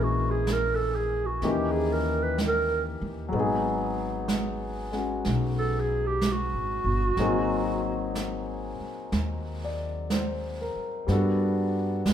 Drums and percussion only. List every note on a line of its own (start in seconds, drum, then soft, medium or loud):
0.47 brush sweep soft
0.47 snare soft
0.47 hi-hat pedal soft
1.42 brush sweep soft
1.42 snare soft
2.38 brush sweep soft
2.38 snare soft
2.38 hi-hat pedal soft
3.34 brush sweep soft
4.28 brush sweep soft
4.28 snare soft
4.28 hi-hat pedal medium
4.93 snare soft
5.25 brush sweep soft
5.25 snare soft
6.21 brush sweep soft
6.21 snare soft
6.21 hi-hat pedal medium
7.17 brush sweep soft
7.17 snare soft
8.15 brush sweep soft
8.15 snare soft
8.15 hi-hat pedal medium
9.12 brush sweep soft
9.12 snare soft
10.10 brush sweep soft
10.10 snare soft
10.10 hi-hat pedal medium
11.08 brush sweep soft
11.08 snare soft
12.05 brush sweep soft
12.05 snare soft
12.05 hi-hat pedal medium